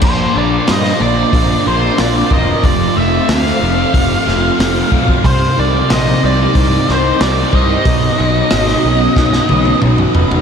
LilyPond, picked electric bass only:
\new Staff \with { instrumentName = "Picked electric bass" } { \clef bass \time 4/4 \tempo 4 = 92 bes,,8 bes,,8 g,8 bes,,8 bes,,8 bes,,8 bes,,8 e,,8 | f,,8 f,,8 d,8 f,,8 f,,8 f,,8 f,,8 b,,8 | c,8 c,8 bes,,8 c,8 c,8 c,8 c,8 c,8 | b,,8 b,,8 gis,,8 b,,8 b,,8 b,,8 b,,8 f,,8 | }